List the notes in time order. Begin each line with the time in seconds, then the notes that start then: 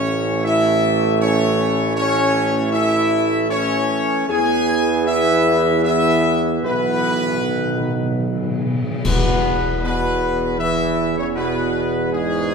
Already playing: A1 E3 A3 C#4 C#5
0.44 E4 E5
1.20 C#4 C#5
1.96 C#4 C#5
2.72 E4 E5
3.49 C#4 C#5
4.28 E2 E3 B3 G#4 G#5
5.06 E4 E5
5.83 E4 E5
6.62 B1 B2 B3 B4
6.70 B2
6.78 B2
6.86 B2
6.94 B2
7.02 B2
7.10 B2
7.18 B2
7.26 B2
7.34 B2
7.41 B2 D#3
7.49 B2
7.57 B2
7.65 B2
7.73 B2
7.80 B2
7.88 B2
7.95 B2
8.03 B2
8.11 B2
8.19 B2
8.27 B2
8.35 B2
8.43 B2
8.51 B2
8.58 B2
8.66 B2
8.75 B2
8.83 B2
8.91 B2
9.04 E2 B2 B3 B4, concert bass drum, crash
9.82 B2 B3 B4
10.59 E3 E4 E5
11.16 C#3 C#4 C#5
11.35 B2 B3 B4
12.10 G#2 G#3 G#4